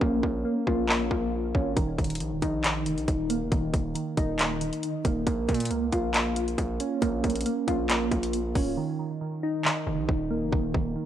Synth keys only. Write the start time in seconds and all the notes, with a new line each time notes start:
Already playing: C#4 F4
0.01 A#3
0.23 A#3
0.45 A#3
0.67 F4
0.89 A#3
1.11 A#3
1.54 C#4
1.76 D#3
1.98 D#3
2.21 D#3
2.42 D#4
2.64 D#3
2.86 D#3
3.30 A#3
3.52 D#3
3.74 D#3
3.95 D#3
4.17 D#4
4.39 D#3
4.61 D#3
5.05 A#3
5.27 A#3
5.48 A#3
5.71 A#3
5.92 F4
6.14 A#3
6.37 A#3
6.80 C#4
7.02 A#3
7.24 A#3
7.46 A#3
7.68 F4
7.89 A#3
8.12 A#3
8.55 C#4
8.77 D#3
8.99 D#3
9.21 D#3
9.43 D#4
9.65 D#3
9.87 D#3
10.30 A#3
10.53 D#3
10.74 D#3
10.96 D#3